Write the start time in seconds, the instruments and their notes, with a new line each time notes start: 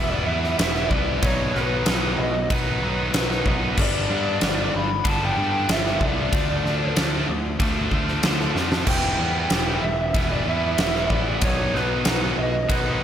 Already playing: picked electric bass E1, distorted electric guitar E3 G3 B3
0.09 distorted electric guitar B3 E4, lead electric guitar D5
0.13 distorted electric guitar G3
0.25 picked electric bass E2, distorted electric guitar E3 G3 B3, lead electric guitar E5
0.30 distorted electric guitar E4
0.44 snare
0.57 picked electric bass E1, distorted electric guitar E3 G3 B3, lead electric guitar E5, snare, ride bell
0.61 distorted electric guitar E4
0.74 distorted electric guitar G3 B3 E4, snare
0.89 picked electric bass C2, distorted electric guitar E3 G3 B3, lead electric guitar D5, kick
0.93 distorted electric guitar E4
1.06 distorted electric guitar G3 B3 E4
1.22 picked electric bass B1, distorted electric guitar B2 D#3 F#3 B3 D#4, lead electric guitar C#5, kick, ride bell
1.54 picked electric bass B1, distorted electric guitar D#3 F#3 B3 D#4, lead electric guitar B4, snare
1.86 picked electric bass B1, distorted electric guitar B2 D#3 F#3 B3 D#4, snare, ride bell
2.03 distorted electric guitar F#3 B3 D#4
2.17 picked electric bass B1, lead electric guitar D#5, muted distorted electric guitar stroke
2.50 picked electric bass B1, distorted electric guitar D#3 F#3 B3 D#4, lead electric guitar B4, kick, ride bell
2.66 distorted electric guitar F#3 B3 D#4
2.82 picked electric bass B1, distorted electric guitar D#3 F#3 B3 D#4
3.14 picked electric bass B1, distorted electric guitar B2 D#3 F#3 B3 D#4, snare, ride bell
3.30 distorted electric guitar F#3 B3 D#4, snare
3.45 picked electric bass B1, distorted electric guitar D#3 F#3 B3 D#4, kick
3.60 distorted electric guitar F#3 B3 D#4
3.76 picked electric bass G1, distorted electric guitar G2 D3 G3 B3 D4, lead electric guitar D5, kick, crash
4.08 picked electric bass G2, distorted electric guitar D3 G3 B3 D4
4.40 picked electric bass G1, distorted electric guitar G2 D3 G3 B3 D4, snare, ride bell
4.56 distorted electric guitar G3 B3 D4
4.73 picked electric bass G1, lead electric guitar B5, muted distorted electric guitar stroke
5.04 picked electric bass G1, distorted electric guitar D3 G3 B3 D4, lead electric guitar A5, kick, ride bell
5.20 distorted electric guitar G3 B3 D4, lead electric guitar G5
5.36 picked electric bass G2, distorted electric guitar D3 G3 B3 D4
5.68 picked electric bass G1, distorted electric guitar G2 D3 G3 B3 D4, lead electric guitar E5, snare, ride bell
5.84 distorted electric guitar G3 B3 D4, snare
6.00 picked electric bass C2, distorted electric guitar D3 G3 B3 D4, lead electric guitar D5, kick
6.15 distorted electric guitar G3 B3 D4
6.31 picked electric bass D2, distorted electric guitar D3 F3 A3 D4, kick, ride bell
6.64 picked electric bass D2, distorted electric guitar D3 F3 A3 D4, snare
6.95 picked electric bass D2, distorted electric guitar D3 F3 A3 D4, snare, ride bell
7.12 distorted electric guitar F3 A3 D4
7.28 picked electric bass D2, muted distorted electric guitar stroke
7.60 picked electric bass D2, distorted electric guitar D3 F3 A3 D4, kick, ride bell
7.76 distorted electric guitar F3 A3 D4
7.91 picked electric bass D2, distorted electric guitar D3 F3 A3 D4, kick
8.08 snare
8.23 picked electric bass D2, distorted electric guitar D3 F3 A3, snare, ride bell
8.27 distorted electric guitar D4
8.40 distorted electric guitar F3 A3 D4, snare
8.55 picked electric bass F2, distorted electric guitar D3 F3 A3, snare
8.59 distorted electric guitar D4
8.72 distorted electric guitar F3 A3 D4, snare
8.87 picked electric bass E1, distorted electric guitar E3 G3 B3 E4, lead electric guitar G5, kick, crash
9.19 picked electric bass E2, distorted electric guitar E3 G3 B3 E4
9.50 picked electric bass E1, distorted electric guitar E3 G3 B3, snare, ride bell
9.54 distorted electric guitar E4
9.67 distorted electric guitar G3 B3 E4
9.83 picked electric bass E1, lead electric guitar E5, muted distorted electric guitar stroke
10.14 picked electric bass E1, distorted electric guitar E3 G3 B3, lead electric guitar E5, kick, ride bell
10.18 distorted electric guitar E4
10.30 distorted electric guitar G3 B3 E4, lead electric guitar D5
10.47 picked electric bass E2, distorted electric guitar E3 G3 B3 E4, lead electric guitar E5
10.78 picked electric bass E1, distorted electric guitar E3 G3 B3 E4, lead electric guitar E5, snare, ride bell
10.94 distorted electric guitar G3 B3 E4, snare
11.09 picked electric bass A1, distorted electric guitar E3 G3 B3, lead electric guitar D5, kick
11.13 distorted electric guitar E4
11.26 distorted electric guitar G3 B3 E4
11.41 picked electric bass B1, distorted electric guitar B2 D#3 F#3 B3 D#4, lead electric guitar C#5, kick, ride bell
11.74 picked electric bass B1, distorted electric guitar D#3 F#3 B3 D#4, lead electric guitar B4, snare
12.05 picked electric bass B1, distorted electric guitar B2 D#3 F#3 B3 D#4, snare, ride bell
12.20 distorted electric guitar F#3 B3 D#4
12.37 picked electric bass B1, lead electric guitar D#5, muted distorted electric guitar stroke
12.69 picked electric bass B1, distorted electric guitar D#3 F#3 B3 D#4, lead electric guitar B4, kick, ride bell
12.85 distorted electric guitar F#3 B3 D#4